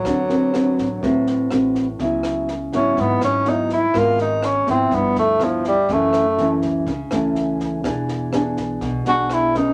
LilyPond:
<<
  \new Staff \with { instrumentName = "Tenor saxophone" } { \time 4/4 \key cis \minor \tempo 4 = 123 fis2. r4 | r4. cis'8 b8 cis'8 dis'8 e'8 | eis'8 dis'8 cis'8 bis8 b8 a8 eis8 g8 | a4. r2 r8 |
r2 r8 fis'8 e'8 dis'8 | }
  \new Staff \with { instrumentName = "Nylon-string guitar" } { \time 4/4 \key cis \minor << { <bis fis' b'>8 <bis fis' b'>8 <bis fis' b'>8 r8 <bis fis' b'>4 <bis fis' b'>8 r8 | <fis b e'>4 r8 <fis b e'>4. <fis b e'>8 r8 | <b fis' ais'>4 r8 <eis b e'>4. <eis b e'>8 r8 | <e a cis'>8 r8 <e a cis'>4 r8 <e a cis'>4. |
<b d' gis'>4 <b d' gis'>4. <b d' gis'>4 <cis' gis' b'>8 | } \\ { d2 a,2 | cis2 gis,2 | gis2 g,2 | fis,2 cis2 |
e2 b,2 | } >> }
  \new Staff \with { instrumentName = "Upright bass" } { \clef bass \time 4/4 \key cis \minor d,4. a,,8 a,,4 a,,4 | cis,4. gis,,8 gis,,8 gis,,4. | gis,,4. gis,,8 g,,8 d,4. | fis,,4. cis,8 cis,8 cis,4. |
e,,4. b,,8 b,,8 r4. | }
  \new DrumStaff \with { instrumentName = "Drums" } \drummode { \time 4/4 <bd ss sn>8 sn8 <ss sn>8 <bd sn>8 <bd sn>8 sn8 <ss sn>8 <bd sn>8 | <bd sn>8 <ss sn>8 sn8 <bd sn>8 <bd sn>8 <ss sn>8 sn8 <bd sn>8 | <bd ss sn>8 sn8 <ss sn>8 <bd sn>8 <bd sn>8 sn8 <ss sn>8 <bd sn>8 | <bd sn>8 <ss sn>8 sn8 <bd sn>8 <bd sn>8 <ss sn>8 sn8 <bd sn>8 |
<bd ss sn>8 sn8 <ss sn>8 <bd sn>8 <bd sn>8 sn8 <ss sn>8 <bd sn>8 | }
>>